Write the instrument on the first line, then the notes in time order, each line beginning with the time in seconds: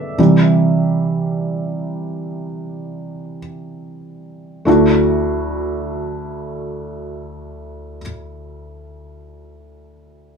felt piano
Already playing: G2 D3 B3 D5 E5
0.18 C3 E3 G3
4.65 D2 A3 D4 E4
4.69 F#4